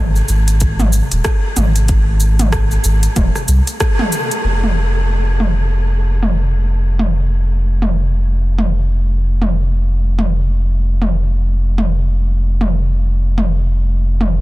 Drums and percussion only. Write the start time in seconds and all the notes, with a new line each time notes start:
0.16 shaker
0.29 shaker
0.48 closed hi-hat, shaker
0.60 kick, closed hi-hat, shaker
0.79 mid tom, shaker
0.93 shaker
1.12 closed hi-hat, shaker
1.25 kick, cross-stick, closed hi-hat, shaker
1.57 mid tom, shaker
1.76 closed hi-hat, shaker
1.88 kick, closed hi-hat, shaker
2.20 shaker
2.39 closed hi-hat, mid tom, shaker
2.52 kick, cross-stick, closed hi-hat, shaker
2.71 shaker
2.84 shaker
3.03 closed hi-hat, shaker
3.16 kick, closed hi-hat, mid tom, shaker
3.35 cross-stick, shaker
3.48 shaker
3.67 closed hi-hat, shaker
3.80 kick, cross-stick, closed hi-hat, shaker
3.99 mid tom
4.12 shaker
4.31 closed hi-hat, shaker
4.63 mid tom
5.40 mid tom
6.23 mid tom
6.99 mid tom
7.82 mid tom
8.59 mid tom
9.42 mid tom
10.19 mid tom
11.02 mid tom
11.78 mid tom
12.61 mid tom
13.38 mid tom
14.21 mid tom